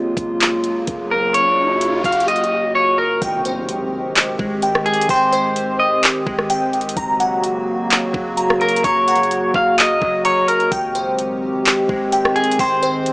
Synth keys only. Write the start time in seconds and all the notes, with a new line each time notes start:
3.22 G5
3.45 C5
4.39 G#3
4.63 G5
5.09 G5
5.33 C5
6.26 G#3
6.50 G5
6.97 A#5
7.20 F#5
8.13 F#3
8.37 A#5
8.84 A#5
9.08 F#5
10.01 F#3
10.25 A#5
10.71 G5
10.95 C5
11.89 G#3
12.13 G5
12.60 G5
12.83 C5